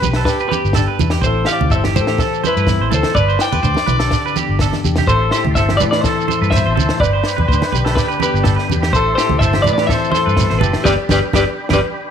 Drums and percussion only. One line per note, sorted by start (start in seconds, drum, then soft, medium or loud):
0.03 high conga medium
0.03 low conga medium
0.03 shekere medium
0.13 snare medium
0.25 kick medium
0.25 snare medium
0.25 shekere medium
0.40 shekere soft
0.52 high conga medium
0.52 shekere medium
0.65 shekere soft
0.73 kick medium
0.73 snare medium
0.73 shekere medium
0.99 high conga medium
0.99 low conga medium
0.99 shekere medium
1.10 snare medium
1.22 kick loud
1.22 shekere medium
1.45 snare medium
1.45 shekere medium
1.61 high conga medium
1.61 low conga medium
1.70 kick medium
1.70 shekere medium
1.84 snare medium
1.84 high conga medium
1.96 high conga medium
1.96 low conga medium
1.96 shekere medium
2.07 snare medium
2.18 kick medium
2.18 snare medium
2.18 shekere medium
2.34 shekere soft
2.44 high conga medium
2.44 shekere medium
2.57 shekere soft
2.67 kick medium
2.67 snare medium
2.67 shekere loud
2.92 high conga medium
2.92 low conga medium
2.92 shekere medium
3.03 snare medium
3.15 kick medium
3.15 shekere medium
3.29 shekere soft
3.39 snare medium
3.39 shekere medium
3.53 high conga medium
3.53 low conga medium
3.63 kick medium
3.63 shekere medium
3.74 snare medium
3.74 high conga medium
3.74 shekere soft
3.87 high conga medium
3.87 low conga medium
3.87 shekere medium
4.00 snare medium
4.00 shekere soft
4.11 kick medium
4.11 snare medium
4.11 shekere medium
4.27 shekere soft
4.36 high conga medium
4.36 shekere medium
4.59 kick medium
4.59 snare medium
4.59 shekere medium
4.73 snare soft
4.73 high conga medium
4.73 shekere soft
4.84 low conga medium
4.84 shekere medium
4.96 snare medium
4.96 low conga medium
4.96 shekere soft
5.07 kick medium
5.07 shekere medium
5.31 snare medium
5.31 shekere medium
5.45 high conga medium
5.45 low conga medium
5.55 kick medium
5.55 snare soft
5.55 shekere medium
5.69 snare medium
5.69 high conga medium
5.80 high conga medium
5.80 low conga medium
5.80 shekere medium
5.93 snare medium
6.04 kick medium
6.04 snare medium
6.04 shekere medium
6.21 shekere soft
6.28 high conga medium
6.28 shekere medium
6.43 shekere soft
6.51 kick medium
6.51 snare medium
6.56 shekere medium
6.77 high conga medium
6.77 low conga medium
6.77 shekere medium
6.89 snare medium
7.00 kick loud
7.00 shekere medium
7.24 snare medium
7.28 shekere medium
7.38 high conga medium
7.38 low conga medium
7.49 kick medium
7.49 shekere medium
7.62 snare medium
7.62 high conga medium
7.72 high conga medium
7.72 low conga medium
7.72 shekere medium
7.86 snare medium
7.97 kick medium
7.97 snare medium
7.97 shekere medium
8.11 shekere soft
8.20 high conga medium
8.20 shekere medium
8.36 shekere soft
8.44 kick medium
8.44 snare medium
8.44 shekere medium
8.59 snare soft
8.70 high conga medium
8.70 low conga medium
8.70 shekere medium
8.83 snare medium
8.93 kick medium
8.93 shekere medium
9.18 snare medium
9.18 shekere medium
9.29 high conga medium
9.29 low conga medium
9.41 kick medium
9.41 shekere medium
9.53 snare medium
9.53 high conga medium
9.64 high conga medium
9.64 low conga medium
9.64 shekere medium
9.78 snare medium
9.89 kick medium
9.89 snare medium
9.89 shekere medium
10.04 shekere soft
10.12 snare soft
10.12 high conga medium
10.12 shekere medium
10.29 shekere soft
10.37 kick medium
10.37 snare medium
10.37 shekere loud
10.50 snare soft
10.61 high conga medium
10.61 low conga medium
10.61 shekere medium
10.73 snare medium
10.85 kick medium
10.85 snare medium
10.85 high conga medium
10.85 shekere loud
11.09 kick medium
11.09 snare medium
11.09 high conga medium
11.09 shekere loud
11.33 kick medium
11.33 snare medium
11.33 high conga medium
11.33 shekere medium
11.69 kick medium
11.69 snare medium
11.69 high conga medium
11.69 shekere medium